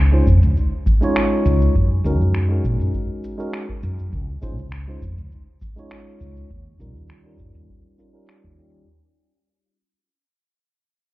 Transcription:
Already playing: fretless electric bass C#2
0.12 tine electric piano G#3 C#4 D#4 F4 C5
0.27 fretless electric bass F2, kick, cabasa
0.43 fretless electric bass C#2, cabasa
0.57 cabasa
0.86 kick, cabasa
1.01 tine electric piano G#3 C#4 D#4 F4 C#5, cabasa
1.16 finger snap, cabasa
1.46 fretless electric bass C#2, cabasa
1.62 cabasa
1.75 fretless electric bass F#2, kick, cabasa
2.04 fretless electric bass C#2, tine electric piano G#3 C#4 D#4 F#4 A#4, cabasa
2.21 fretless electric bass F#2, cabasa
2.35 finger snap, cabasa
2.48 tine electric piano G#3 C#4 D#4 F#4 A#4
2.64 fretless electric bass A#2, kick, cabasa
2.80 fretless electric bass F#2, cabasa
2.94 kick, cabasa
3.24 cabasa
3.38 tine electric piano G#3 C#4 D#4 F#4 A#4, cabasa
3.53 finger snap, cabasa
3.69 kick
3.83 fretless electric bass F#2, cabasa
3.99 cabasa
4.13 fretless electric bass C#2, kick, cabasa
4.42 fretless electric bass G#1, tine electric piano G#3 C#4 D#4 F4 C5, kick, cabasa
4.58 fretless electric bass C#2, cabasa
4.72 finger snap, cabasa
4.88 tine electric piano G#3 C#4 D#4 F4 C5
5.02 fretless electric bass F2, kick, cabasa
5.18 fretless electric bass C#2, cabasa
5.32 cabasa
5.61 kick, cabasa
5.76 tine electric piano G#3 C#4 D#4 F4 C#5, cabasa
5.91 finger snap, cabasa
6.21 fretless electric bass C#2, cabasa
6.37 cabasa
6.51 fretless electric bass D#2, kick, cabasa
6.79 fretless electric bass A#1, tine electric piano G3 C#4 D#4 F4 A#4, cabasa
6.96 fretless electric bass D#2, cabasa
7.10 finger snap, cabasa
7.23 tine electric piano G3 C#4 D#4 F4 A#4
7.39 fretless electric bass G2, kick, cabasa
7.55 fretless electric bass D#2, cabasa
7.69 kick
7.98 tine electric piano G3 C#4 D#4 F4 A#4, cabasa
8.13 tine electric piano G3 C#4 D#4 F4 A#4, cabasa
8.29 finger snap
8.44 fretless electric bass D#2, kick
8.57 tine electric piano G3 C#4 D#4 F4 G4, cabasa

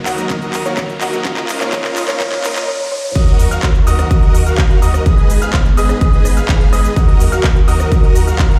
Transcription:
Already playing: string section D#3 D#4 F#4 A#4, grand piano F#3 A#3 D#4 C#5, riser
0.06 sub bass D#2, supersaw synth F#4 A#4 D#5, marimba F#5, clap, open hi-hat, cabasa
0.17 grand piano F#3 A#3 D#4 A#4, closed hi-hat, cabasa
0.29 sub bass D#2, grand piano F#3 A#3 D#4 A#4, supersaw synth F#4 A#4 D#5, kick, clap, closed hi-hat, cabasa
0.42 closed hi-hat, cabasa
0.53 sub bass D#2, clap, open hi-hat, cabasa
0.65 grand piano F#3 A#3 D#4 C#5, supersaw synth F#4 A#4 F5, marimba C#5, closed hi-hat, cabasa
0.77 sub bass D#2, kick, clap, closed hi-hat, cabasa
0.89 closed hi-hat, cabasa
1.01 sub bass D#2, supersaw synth F#4 A#4 D#5, marimba F#5, clap, open hi-hat, cabasa
1.12 grand piano F#3 A#3 D#4 A#4, closed hi-hat, cabasa
1.24 sub bass C#2, string section C#3 C#4 D#4 F4, grand piano F3 A#3 D#4 A#4, supersaw synth F4 A#4 D#5, kick, clap, closed hi-hat, cabasa
1.37 clap, closed hi-hat, cabasa
1.49 sub bass C#2, clap, open hi-hat, cabasa
1.60 grand piano F3 A#3 D#4 C#5, supersaw synth F4 A#4 F5, marimba C#5, clap, closed hi-hat, cabasa
1.72 sub bass C#2, grand piano F3 A#3 D#4 A#4, supersaw synth F4 A#4 D#5, kick, clap, closed hi-hat, cabasa
1.84 clap, closed hi-hat, cabasa
1.96 sub bass C#2, clap, open hi-hat, cabasa
2.08 grand piano F3 A#3 D#4 C#5, supersaw synth F4 A#4 F5, marimba C#5, clap, cabasa
2.19 sub bass C#2, grand piano F3 A#3 D#4 A#4, supersaw synth F4 A#4 D#5, marimba C#5, kick, clap, closed hi-hat, cabasa
2.32 clap, closed hi-hat, cabasa
2.43 sub bass C#2, grand piano F3 A#3 D#4 A#4, supersaw synth F4 A#4 D#5, marimba C#5, clap, open hi-hat, cabasa
2.56 clap, closed hi-hat, cabasa
2.68 marimba C#5
2.92 marimba C#5
3.15 sub bass D#2, string section D#3 D#4 F#4 A#4, supersaw synth F#4 A#4 D#5, grand piano D#6, kick, closed hi-hat, crash, cabasa
3.27 closed hi-hat
3.39 sub bass D#2, open hi-hat, cabasa
3.51 supersaw synth F#4 A#4 F5, grand piano F6, closed hi-hat, cabasa
3.63 sub bass D#2, kick, clap, closed hi-hat, cabasa
3.75 closed hi-hat
3.87 sub bass D#2, supersaw synth F#4 A#4 D#5, grand piano D#6, open hi-hat, cabasa
3.99 cross-stick, closed hi-hat, cabasa
4.11 sub bass D#2, supersaw synth F#4 A#4 D#5, grand piano D#6, kick, closed hi-hat, cabasa
4.23 closed hi-hat
4.34 sub bass D#2, open hi-hat, cabasa
4.46 supersaw synth F#4 A#4 F5, grand piano F6, closed hi-hat, cabasa
4.58 sub bass D#2, kick, clap, closed hi-hat, cabasa
4.70 closed hi-hat
4.82 sub bass D#2, supersaw synth F#4 A#4 D#5, grand piano D#6, open hi-hat, cabasa
4.94 cross-stick, closed hi-hat, cabasa
5.06 sub bass G#1, string section G#3 B3, supersaw synth G#4 B4 D#5, grand piano D#6, kick, closed hi-hat, cabasa
5.18 closed hi-hat
5.30 sub bass G#1, open hi-hat, cabasa
5.42 supersaw synth G#4 B4 F5, grand piano F6, closed hi-hat, cabasa
5.53 sub bass G#1, kick, clap, closed hi-hat, cabasa
5.65 closed hi-hat
5.77 sub bass G#1, supersaw synth G#4 B4 D#5, grand piano D#6, open hi-hat, cabasa
5.89 cross-stick, closed hi-hat, cabasa
6.01 sub bass G#1, supersaw synth G#4 B4 D#5, grand piano D#6, kick, closed hi-hat, cabasa
6.13 closed hi-hat
6.25 sub bass G#1, cross-stick, open hi-hat, cabasa
6.37 supersaw synth G#4 B4 F5, grand piano F6, closed hi-hat, cabasa
6.49 sub bass G#1, kick, clap, closed hi-hat, cabasa
6.61 closed hi-hat
6.73 sub bass G#1, supersaw synth G#4 B4 D#5, grand piano D#6, cross-stick, open hi-hat, cabasa
6.85 closed hi-hat, cabasa
6.96 sub bass D#2, string section D#3 F#4 A#4, supersaw synth F#4 A#4 D#5, grand piano D#6, kick, closed hi-hat, cabasa
7.08 closed hi-hat
7.20 sub bass D#2, open hi-hat, cabasa
7.32 supersaw synth F#4 A#4 F5, grand piano F6, closed hi-hat, cabasa
7.44 sub bass D#2, kick, clap, closed hi-hat, cabasa
7.56 closed hi-hat
7.68 sub bass D#2, supersaw synth F#4 A#4 D#5, grand piano D#6, open hi-hat, cabasa
7.80 cross-stick, closed hi-hat, cabasa
7.92 sub bass D#2, supersaw synth F#4 A#4 D#5, grand piano D#6, kick, closed hi-hat, cabasa
8.04 closed hi-hat
8.15 sub bass D#2, open hi-hat, cabasa
8.27 supersaw synth F#4 A#4 F5, grand piano F6, closed hi-hat, cabasa
8.39 sub bass D#2, kick, clap, closed hi-hat, cabasa
8.51 closed hi-hat

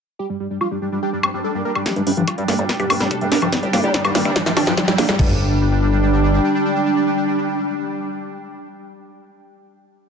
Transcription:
0.19 synth texture G3 D4, ambient pad D4, analog synth lead G4
0.30 analog synth lead G3
0.40 analog synth lead G3
0.50 analog synth lead G3
0.61 analog synth lead F4, high woodblock
0.71 analog synth lead G3
0.77 ambient pad G4
0.82 analog synth lead G3
0.92 analog synth lead G3, ambient pad G5
1.03 analog synth lead G4
1.13 analog synth lead G3
1.23 analog synth lead G3, wobble bass C4, high woodblock
1.34 analog synth lead G3, wobble bass C4
1.44 analog synth lead A4
1.55 analog synth lead G3, wobble bass A#3
1.65 wobble bass A#3, analog synth lead A#4
1.75 analog synth lead G3, high woodblock
1.86 synth texture G3 D4, synth arpeggio sound G3, analog synth lead G4, kick, snare, closed hi-hat, riser
1.96 analog synth bass G1, analog synth lead G3, synth arpeggio sound A3, closed hi-hat
2.07 analog synth bass G1, analog synth lead G3, synth arpeggio sound D4, open hi-hat
2.17 analog synth bass G1, synth arpeggio sound F3, analog synth lead G3, closed hi-hat
2.27 synth arpeggio sound G3, analog synth lead F4, kick, closed hi-hat, high woodblock
2.38 analog synth bass G2, synth arpeggio sound G3, analog synth lead G3, closed hi-hat
2.48 analog synth bass G1, analog synth lead G3, synth arpeggio sound A#3, snare, open hi-hat
2.59 analog synth bass G1, synth arpeggio sound G3, analog synth lead G3, closed hi-hat
2.69 synth arpeggio sound G3, analog synth lead G4, kick, snare, closed hi-hat
2.80 analog synth bass G1, analog synth lead G3, synth arpeggio sound G4, closed hi-hat
2.90 analog synth bass G1, analog synth lead G3, synth arpeggio sound A#3, wobble bass C4, open hi-hat, high woodblock
3.00 analog synth bass F1, synth arpeggio sound G3, analog synth lead G3, wobble bass C4, snare, closed hi-hat
3.11 synth arpeggio sound G3, analog synth lead A4, kick, closed hi-hat
3.21 analog synth bass G1, analog synth lead G3, synth arpeggio sound A3, wobble bass A#3, closed hi-hat
3.32 analog synth bass G1, wobble bass A#3, synth arpeggio sound D4, analog synth lead A#4, snare, open hi-hat
3.42 analog synth bass G1, synth arpeggio sound F3, analog synth lead G3, closed hi-hat, high woodblock
3.52 analog synth lead G3, synth arpeggio sound G3, kick, snare, closed hi-hat
3.63 analog synth bass A1, synth arpeggio sound G3, analog synth lead G4, closed hi-hat
3.73 analog synth bass A1, analog synth lead G3, synth arpeggio sound A#3, snare, open hi-hat
3.84 analog synth bass A1, synth arpeggio sound G3, analog synth lead G4, closed hi-hat
3.94 synth arpeggio sound G3, analog synth lead G3, kick, snare, closed hi-hat
4.05 analog synth bass G1, analog synth lead G3, synth arpeggio sound G4, closed hi-hat, high woodblock
4.15 analog synth bass G1, analog synth lead G3, synth arpeggio sound A#3, snare, open hi-hat
4.25 analog synth bass G1, synth arpeggio sound G3, analog synth lead D4, closed hi-hat
4.36 synth arpeggio sound G3, analog synth lead G3, kick, snare, closed hi-hat
4.46 analog synth bass G1, analog synth lead G3, synth arpeggio sound A3, snare, closed hi-hat
4.57 analog synth bass G1, wobble bass C4, synth arpeggio sound D4, analog synth lead D4, snare, open hi-hat, high woodblock
4.67 analog synth bass G1, synth arpeggio sound F3, analog synth lead G3, snare, closed hi-hat
4.77 synth arpeggio sound G3, analog synth lead D4, kick, snare, closed hi-hat
4.88 analog synth bass F1, synth arpeggio sound G3, analog synth lead G3, snare, closed hi-hat
4.98 analog synth bass F1, synth arpeggio sound A#3, analog synth lead D4, snare, open hi-hat
5.09 analog synth bass F1, synth arpeggio sound G3, analog synth lead G3, snare
5.19 analog synth bass G1, synth arpeggio sound G3, synth texture G3 D4, ambient pad D4, analog synth lead D4, kick, floor tom, crash
5.25 ambient pad G4
5.32 ambient pad G5

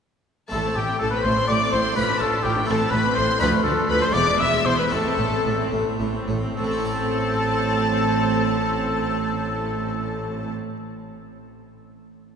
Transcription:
0.48 cello section A2, harpsichord A3 C4 E4, viola section A3, oboe A4, violin section A5
0.52 double bass section A1, harpsichord A2, violin section A4
0.64 viola section C4
0.76 double bass section A1, cello section A2, harpsichord A2, viola section A3, oboe G4, violin section G4 G5
0.88 viola section C4
0.99 double bass section A1, cello section A2, harpsichord A2, viola section A3, oboe A4, violin section A4 A5
1.10 viola section C4, oboe B4, violin section B4 B5
1.22 double bass section A1, cello section A2, harpsichord A2, viola section A3, oboe C5, violin section C5 C6
1.37 viola section C4
1.48 double bass section A1, cello section A2, harpsichord A2, viola section A3, oboe D5, violin section D5 D6
1.60 viola section C4
1.72 double bass section A1, cello section A2, harpsichord A2, viola section A3, oboe C5, violin section C5 C6
1.85 viola section C4
1.92 harpsichord A3 D4 F4, oboe B4
1.96 double bass section A1, harpsichord A2, cello section A2, viola section F4, violin section B4 B5
2.09 viola section D4
2.20 double bass section A1, harpsichord A2, cello section A2, viola section F4, oboe A4, violin section A4 A5
2.33 viola section D4
2.43 double bass section A1, cello section A2, harpsichord A2, viola section F4, oboe G4, violin section G4 G5
2.57 viola section D4
2.64 harpsichord A3 C4 E4, oboe A4
2.68 double bass section A1, harpsichord A2, cello section A2, viola section A3, violin section A4 A5
2.81 viola section C4
2.90 double bass section A1, cello section A2, harpsichord A2, viola section A3, oboe B4, violin section B4 B5
3.05 viola section C4
3.15 double bass section A1, harpsichord A2, cello section A2, viola section A3, oboe C5, violin section C5 C6
3.29 viola section C4
3.37 cello section D2, viola section F3, harpsichord A3 D4 F4, oboe B4, violin section B5
3.41 double bass section D2, harpsichord D2, violin section B4
3.53 viola section A3
3.63 harpsichord D2, cello section D2, double bass section D2, viola section F3, oboe A4, violin section A4 A5
3.78 viola section A3
3.90 harpsichord D2, cello section D2, double bass section D2, viola section F3, oboe B4, violin section B4 B5
4.01 viola section A3, oboe C5, violin section C5 C6
4.10 harpsichord G#3 B3 E4, viola section B3, oboe D5
4.14 double bass section E1, cello section E2, harpsichord E2, violin section D5 D6
4.27 viola section G#3
4.39 double bass section E1, cello section E2, harpsichord E2, viola section B3, oboe E5, violin section E5 E6
4.52 viola section G#3
4.65 double bass section E1, cello section E2, harpsichord E2, viola section B3, oboe C5, violin section C5 C6
4.78 viola section G#3, oboe B4, violin section B4 B5
4.88 double bass section A1, cello section A2, harpsichord A3 C4 E4, viola section A3, violin section A4
4.92 harpsichord A2, oboe A4, violin section A5
5.05 viola section C4
5.17 double bass section A1, cello section A2, harpsichord A2, viola section A3
5.31 viola section C4
5.44 double bass section A1, cello section A2, harpsichord A2, viola section A3
5.58 viola section C4
5.71 double bass section A1, cello section A2, harpsichord A2, viola section A3
5.85 viola section C4
5.98 double bass section A1, cello section A2, harpsichord A2, viola section A3
6.13 viola section C4
6.27 double bass section A1, cello section A2, harpsichord A2, viola section A3
6.41 viola section C4
6.55 double bass section A1, cello section A2, harpsichord A2, viola section C4, violin section A4 A5, oboe A4
6.64 harpsichord A3
6.71 harpsichord C4
6.78 harpsichord E4
6.85 harpsichord C5

